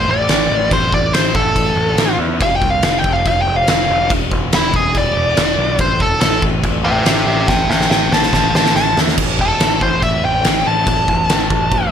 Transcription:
0.08 picked electric bass A1, lead electric guitar D5
0.29 picked electric bass A1, snare, crash
0.50 picked electric bass A1
0.71 picked electric bass A1, lead electric guitar C5, kick, crash
0.92 picked electric bass A1, lead electric guitar D5, kick
1.14 picked electric bass A1, lead electric guitar C5, snare, crash
1.35 picked electric bass A1, lead electric guitar A4, kick
1.56 picked electric bass A1, kick, crash
1.76 picked electric bass A1
1.97 picked electric bass A1, snare, crash
2.18 picked electric bass E2
2.41 picked electric bass F1, lead electric guitar F5, kick, crash
2.56 lead electric guitar G5
2.62 picked electric bass C2, kick
2.70 lead electric guitar F5
2.83 picked electric bass F1, lead electric guitar F5, snare, crash
2.99 lead electric guitar G5
3.04 picked electric bass F1, kick
3.13 lead electric guitar F5
3.25 picked electric bass F1, lead electric guitar F5, kick, crash
3.42 lead electric guitar G5
3.46 picked electric bass F1
3.56 lead electric guitar F5
3.68 picked electric bass F1, lead electric guitar F5, snare, crash
3.90 picked electric bass F1
4.10 picked electric bass E1, kick, crash
4.32 picked electric bass E1, kick
4.52 picked electric bass E1, lead electric guitar E4, snare, crash
4.73 picked electric bass E1, lead electric guitar G#4, kick
4.95 picked electric bass E1, lead electric guitar D5, kick, crash
5.15 picked electric bass E1
5.37 picked electric bass E1, snare, crash
5.57 picked electric bass B1
5.78 picked electric bass A1, lead electric guitar C5, kick, crash
6.00 picked electric bass E1, lead electric guitar A4, kick
6.21 picked electric bass A1, lead electric guitar A4, snare, crash
6.42 picked electric bass A1, kick
6.64 picked electric bass A1, kick, crash
6.85 picked electric bass A1, lead electric guitar G4 E5
7.06 picked electric bass A1, lead electric guitar G4 E5, snare, crash
7.27 picked electric bass A1, lead electric guitar G4 E5
7.48 picked electric bass A1, lead electric guitar E5 G5, kick, snare
7.69 picked electric bass A1, lead electric guitar E5 G5, snare
7.81 snare
7.90 picked electric bass A1, lead electric guitar E5 G5, snare
8.11 picked electric bass A1, lead electric guitar C5 A5, snare
8.23 snare
8.33 picked electric bass A1, lead electric guitar C5 A5, kick, snare
8.54 picked electric bass A1, lead electric guitar C5 A5, snare
8.66 snare
8.75 picked electric bass A1, lead electric guitar A5, snare
8.97 picked electric bass E2, snare
9.08 snare
9.18 picked electric bass A1, kick, crash
9.39 picked electric bass E1, lead electric guitar A4, kick
9.60 picked electric bass A1, snare, crash
9.81 picked electric bass A1, lead electric guitar C5, kick
10.02 picked electric bass A1, lead electric guitar E5, kick, crash
10.24 picked electric bass A1, lead electric guitar G5
10.44 picked electric bass A1, snare, crash
10.66 picked electric bass A1, lead electric guitar A5
10.87 picked electric bass A1, kick, crash
11.08 picked electric bass A1, kick
11.29 picked electric bass A1, snare, crash
11.50 picked electric bass A1, kick
11.71 picked electric bass A1, kick, crash

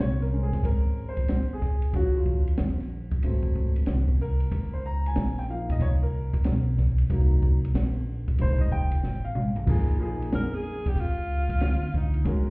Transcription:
0.00 upright bass C2, grand piano C#5, snare, hi-hat pedal, ride
0.21 grand piano A#4, snare
0.33 grand piano G#3 C4 C#4
0.43 grand piano G#4
0.53 kick, snare, ride
0.63 upright bass G#1, grand piano A#4, kick, ride
1.09 grand piano C5
1.17 kick, ride
1.28 upright bass A#1, snare, hi-hat pedal, ride
1.53 grand piano G#4
1.62 kick, snare
1.82 ride
1.93 upright bass D#2, grand piano F3 F#3 C#4 F#4, kick, ride
2.17 grand piano F4
2.26 kick
2.47 ride
2.57 upright bass A#1, snare, hi-hat pedal, ride
2.79 snare
3.11 kick, ride
3.23 upright bass G#1, grand piano F#3 A3 C4, ride
3.43 kick
3.56 kick
3.76 ride
3.86 upright bass C2, snare, hi-hat pedal, ride
4.08 kick
4.20 grand piano A#4, snare
4.40 ride
4.52 upright bass C#2, kick, ride
4.73 grand piano C5
4.86 grand piano A#5
5.06 grand piano G#5, ride
5.16 upright bass A#1, snare, hi-hat pedal, ride
5.37 grand piano G5, snare
5.49 grand piano F3 A#3 D#4 F5
5.70 grand piano D#5, kick, ride
5.80 upright bass C2, grand piano C#5, kick, ride
6.03 grand piano A#4
6.33 muted upright bass stroke, kick, ride
6.44 upright bass B1, snare, hi-hat pedal, ride
6.78 kick, snare
6.98 ride
7.10 upright bass C2, grand piano F#3 A#3 D#4, kick, ride
7.43 kick
7.65 ride
7.74 upright bass A#1, snare, hi-hat pedal, ride
8.28 kick, ride
8.38 upright bass F1, grand piano G3 A3 D#4 C5, ride
8.59 grand piano D#5, kick
8.72 grand piano G5, kick
8.92 ride
9.03 upright bass A1, snare
9.25 grand piano F5
9.35 mid tom
9.56 floor tom
9.66 upright bass A#1, grand piano F3 A#3 D#4 G#4, kick, crash
9.98 grand piano F3 A#3 D#4 G#4
10.22 ride
10.32 upright bass F2, alto saxophone A#4, snare, hi-hat pedal, ride
10.54 alto saxophone G#4, snare
10.86 alto saxophone G4, kick, snare, ride
10.96 upright bass C#2, kick, ride
11.01 alto saxophone F4
11.49 kick, ride
11.60 upright bass D2, snare, hi-hat pedal, ride
11.93 alto saxophone D#4, kick, snare
12.14 ride
12.24 upright bass D#2, grand piano G#3 C#4 F#4 A#4, kick, ride

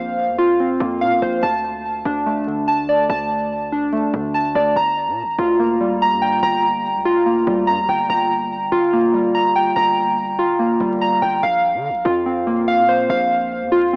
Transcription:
Already playing: 808-style bass A#1, synth keys A#3 C4 C5 F5
0.28 808-style bass F2
0.38 synth keys F4
0.60 synth keys C4
0.80 808-style bass F2, synth keys A#3
1.01 808-style bass A#2, synth keys F5
1.12 808-style bass F2
1.22 808-style bass A#1, synth keys C5
1.43 808-style bass D2, synth keys A5
2.05 808-style bass D2, synth keys D4
2.26 synth keys A3
2.47 synth keys D3
2.68 synth keys A5
2.89 synth keys D5
3.10 808-style bass D2, synth keys A5
3.72 synth keys D4
3.93 synth keys A3
4.14 808-style bass D2, synth keys D3
4.34 synth keys A5
4.55 808-style bass D2, synth keys D5
4.76 808-style bass G1, synth keys A#5
5.07 808-style bass A#2
5.23 808-style bass G1
5.39 808-style bass D2, synth keys F4
5.59 synth keys A#3
5.80 synth keys G3
6.02 synth keys A#5
6.11 808-style bass G2
6.22 synth keys G5
6.43 808-style bass G1, synth keys A#5
6.95 808-style bass D2
7.05 synth keys F4
7.26 synth keys A#3
7.47 808-style bass D2, synth keys G3
7.67 808-style bass G2, synth keys A#5
7.78 808-style bass D2
7.89 808-style bass G1, synth keys G5
8.10 808-style bass G1, synth keys A#5
8.72 808-style bass G1, synth keys F4
8.93 synth keys A#3
9.14 synth keys G3
9.35 synth keys A#5
9.56 synth keys G5
9.76 808-style bass G1, synth keys A#5
10.39 synth keys F4
10.59 synth keys A#3
10.80 808-style bass G1, synth keys G3
11.01 synth keys A#5
11.22 808-style bass G1, synth keys G5
11.43 808-style bass A#1, synth keys F5
11.74 808-style bass D3
11.90 808-style bass A#1
12.05 808-style bass F2, synth keys F4
12.26 synth keys C4
12.47 synth keys A#3
12.68 synth keys F5
12.78 808-style bass A#2
12.88 synth keys C5
13.10 808-style bass A#1, synth keys F5
13.62 808-style bass F2
13.72 synth keys F4
13.93 synth keys C4

